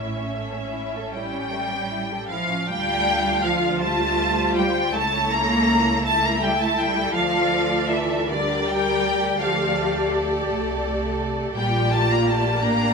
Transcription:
Already playing: A1 A2 C#4 E4 E5
0.18 C#4
0.37 A3
0.56 C#4
0.75 E4
0.95 A4
1.14 G3 E4 G5
1.34 C#4
1.52 A3
1.72 C#4
1.91 E4
2.11 A4
2.31 F3 E4 F5
2.50 C#4
2.69 D2 G3 A3 D4 F4 F5 G5
3.43 F3 F5
3.80 G3 A3 F4 C5 A5
4.56 G3 G5
4.93 C#2 A3 E4 A4 C#5 A5
5.30 A#3 A#5
6.03 A3 E4 A4 E5 A5
6.21 A#3 A#5
6.40 G3 G5
6.59 A3 A5
6.77 G3 G5
7.13 D2 F3 F4 D5 F5
7.90 E3 E5
8.27 D3 G3 G4 A#4 D5
8.68 G3 G5
9.39 F3 A3 A4 D5 F5
10.48 C2 A3
11.54 A#1 G3 A#3 F4 G4 D5 G5
11.91 A3 A5
12.08 A#3 A#5
12.25 A3 A5
12.61 A1 A#3 D4 G4 A#5

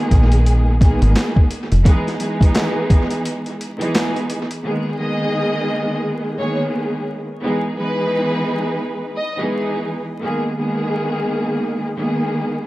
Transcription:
Already playing: D#3 G#3 A#3 B3 G#4
0.11 A#1, kick, closed hi-hat
0.32 closed hi-hat
0.46 closed hi-hat
0.79 D#3 G#3 A#3 B3 G#4, kick, closed hi-hat
1.02 G#1, closed hi-hat
1.16 snare, clap, closed hi-hat
1.36 kick
1.51 closed hi-hat
1.72 F1, closed hi-hat
1.83 E3 G#3 B3 D#4 G#4, kick, closed hi-hat
2.07 snare, closed hi-hat
2.19 E3 G#3 B3 D#4 G#4, closed hi-hat
2.41 kick, closed hi-hat
2.55 snare, clap, closed hi-hat
2.90 kick, closed hi-hat
3.11 closed hi-hat
3.25 closed hi-hat
3.46 closed hi-hat
3.61 closed hi-hat
3.78 E3 G#3 B3 D#4 G#4, closed hi-hat
3.95 snare, clap, closed hi-hat
4.16 closed hi-hat
4.30 closed hi-hat
4.51 closed hi-hat
4.63 D#3 G#3 A#3 B3 G#4
4.98 D#3 G#3 A#3 B3 G#4 D#5
6.38 D#3 G#3 A#3 B3 G#4 C#5
7.42 E3 G#3 B3 D#4 G#4
7.77 E3 G#3 B3 D#4 G#4 B4
9.17 D#5
9.36 E3 G#3 B3 D#4 G#4
10.21 D#3 G#3 A#3 B3 G#4
10.56 D#3 G#3 A#3 B3 G#4
11.96 D#3 G#3 A#3 B3 G#4

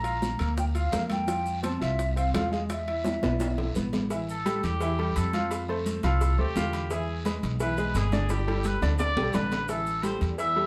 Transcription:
Already playing: A#1 A#5
0.03 F4 F5, high bongo, high conga, high timbale, maracas
0.22 high bongo, high conga, low timbale, short guiro, maracas
0.39 D2 A#3 A#4, high timbale, short guiro, maracas
0.57 G5, high bongo, high conga, long guiro, maracas
0.75 F4 F5, high bongo, high conga, high timbale, maracas
0.92 F2 A#3 A#4, high bongo, low bongo, high conga, high timbale, low timbale, short guiro, maracas
1.10 G5, high bongo, high conga, high timbale, short guiro, maracas
1.27 F3 F4, high bongo, high conga, high timbale, long guiro, maracas
1.46 high conga, maracas
1.63 C4 C5 A5, high bongo, high conga, high timbale, low timbale, short guiro, maracas
1.81 C2 F4 E5, high conga, high timbale, short guiro, maracas
1.99 high bongo, high conga, long guiro, maracas
2.16 C4 C5 F5, high conga, high timbale, maracas
2.34 E2 F3 F4 F5, high bongo, low bongo, high conga, high timbale, low timbale, short guiro, maracas
2.52 G#3 G#4 F5, high conga, short guiro, maracas
2.70 E5, high bongo, high conga, high timbale, long guiro, maracas
2.87 E4 E5, high bongo, high conga, high timbale
3.04 high bongo, high conga, high timbale, short guiro, maracas
3.23 B1 B3 B4, high bongo, high timbale, short guiro, maracas
3.40 high bongo, high conga, high timbale, long guiro, maracas
3.58 E4 E5, low bongo, high conga, low timbale
3.75 A1 B3 B4, high conga, short guiro, maracas
3.93 low bongo, high conga, low timbale, short guiro, maracas
4.10 E3 E4 E5, cowbell, low agogo, long guiro, maracas
4.29 A4, high conga, maracas
4.46 G3 G4 A4, cowbell, high conga, low agogo, short guiro, maracas
4.63 E2 G4, cowbell, short guiro, maracas
4.81 E3 E4 E5, cowbell, high conga, low agogo, long guiro, maracas
4.98 G3 G4 A4, high conga, low agogo
5.16 F2 A4, cowbell, high conga, low agogo, short guiro, maracas
5.33 F3 F4 F5, cowbell, high conga, short guiro, maracas
5.50 cowbell, high conga, low agogo, long guiro, maracas
5.68 A3 A4 C5, high conga, low agogo
5.86 cowbell, high conga, short guiro, maracas
6.03 C2 F3 F4 A4 F5, cowbell, high conga, low conga, low agogo, short guiro, maracas
6.21 cowbell, high conga, low conga, low agogo, long guiro, maracas
6.38 D2 A3 G4 A4 C5, high conga
6.56 E2 D3 F4 F5, cowbell, high conga, low timbale, low agogo, short guiro, maracas
6.73 cowbell, high conga, low agogo, short guiro, maracas
6.90 E3 E4 G#4 E5, cowbell, high conga, low agogo, long guiro, maracas
7.08 high conga
7.25 G#3 G#4 B4, cowbell, high conga, low agogo, short guiro, maracas
7.43 B1, cowbell, short guiro, maracas
7.60 E3 E4 B4 E5, cowbell, high conga, low agogo, long guiro, maracas
7.77 G#3 G#4 B4, high conga, low agogo, maracas
7.94 G1 G#4, cowbell, low timbale, low agogo, short guiro, maracas
8.12 D3 D4 D5, cowbell, high conga, short guiro, maracas
8.29 G4, cowbell, high conga, high timbale, low agogo, long guiro, maracas
8.47 G3 G4 A4, high timbale, low agogo
8.64 B4, cowbell, high conga, short guiro, maracas
8.82 D2 D3 D4 D5, cowbell, high conga, low conga, low timbale, low agogo, short guiro, maracas
8.98 D5, cowbell, high conga, low conga, low timbale, low agogo, long guiro, maracas
9.17 B1 G3 G4 A4, low timbale
9.33 A1 D3 D4 B4 D5, cowbell, high conga, low timbale, low agogo, short guiro, maracas
9.51 cowbell, high conga, low timbale, low agogo, short guiro, maracas
9.68 E3 E4 A4 E5, cowbell, high conga, low agogo, long guiro, maracas
9.86 high conga, maracas
10.03 G3 G4 A4 C5, cowbell, high conga, low agogo, short guiro, maracas
10.21 E2, cowbell, short guiro, maracas
10.38 E3 E4 E5, cowbell, high conga, low agogo, long guiro, maracas
10.55 G3 G4 A4, high conga, low agogo

